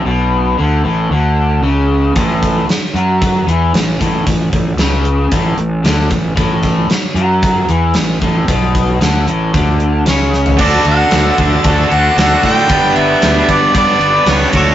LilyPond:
<<
  \new Staff \with { instrumentName = "Harmonica" } { \time 4/4 \key a \mixolydian \tempo 4 = 114 r1 | r1 | r1 | r1 |
r2. cis''8 cis''8 | d''8 fis''4 a''4 fis''8 fis''8 g''8~ | g''8 e''4 d''8 d''4 cis''8 cis''8 | }
  \new Staff \with { instrumentName = "Tonewheel organ" } { \time 4/4 \key a \mixolydian r1 | r1 | r1 | r1 |
r1 | <d' fis' a'>1 | <d' g' b'>2.~ <d' g' b'>8 <d' fis' a'>8 | }
  \new Staff \with { instrumentName = "Distorted electric guitar" } { \time 4/4 \key a \mixolydian r1 | r1 | r1 | r1 |
r1 | <d d' fis' a'>2~ <d d' fis' a'>8 <d d' fis' a'>8 <d d' fis' a'>4 | <g b d' b'>2~ <g b d' b'>8 <g b d' b'>8 <g b d' b'>8 <d d' fis' a'>8 | }
  \new Staff \with { instrumentName = "Overdriven electric guitar" } { \clef bass \time 4/4 \key a \mixolydian b,4 d8 a,8 d4 cis4 | a,4 r8 fis4 e8 a,8 a,8 | a,8 a,8 cis4 a,8 a,8 d8 a,8 | a,4 r8 fis4 e8 a,8 a,8 |
b,4 d8 a,8 d4 cis4 | <d d' fis' a'>2 <d d' fis' a'>2 | <g b d' b'>2 <g b d' b'>4. <d d' fis' a'>8 | }
  \new Staff \with { instrumentName = "Fingered electric bass" } { \clef bass \time 4/4 \key a \mixolydian b,,4 d,8 a,,8 d,4 cis,4 | a,,4 r8 fis,4 e,8 a,,8 a,,8 | a,,8 a,,8 cis,4 a,,8 a,,8 d,8 a,,8 | a,,4 r8 fis,4 e,8 a,,8 a,,8 |
b,,4 d,8 a,,8 d,4 cis,4 | d,8 d,8 d,8 d,8 d,8 d,8 d,8 a,8 | g,,8 g,,8 d,8 g,,8 g,8 g,,8 cis,8 d,8 | }
  \new DrumStaff \with { instrumentName = "Drums" } \drummode { \time 4/4 r4 r4 r4 r4 | <hh bd>8 <hh bd>8 <hh sn>8 hh8 <hh bd>8 hh8 <hh sn>8 <hh bd>8 | <hh bd>8 <hh bd>8 <hh sn>8 hh8 <hh bd>8 hh8 <hh sn>8 <hh bd>8 | <hh bd>8 <hh bd sn>8 <hh sn>8 hh8 <hh bd>8 hh8 <hh sn>8 <hh bd>8 |
<hh bd>8 <hh bd>8 <hh sn>8 hh8 <hh bd>8 hh8 <hh sn>8 sn16 tomfh16 | <cymc bd>8 cymr8 <cymr sn>8 <bd cymr>8 <bd cymr>8 cymr8 <cymr sn>8 <bd cymr>16 sn16 | <bd cymr>8 cymr8 <cymr sn>8 <bd cymr>8 <bd cymr>8 cymr8 <cymr sn>8 <bd cymr>8 | }
>>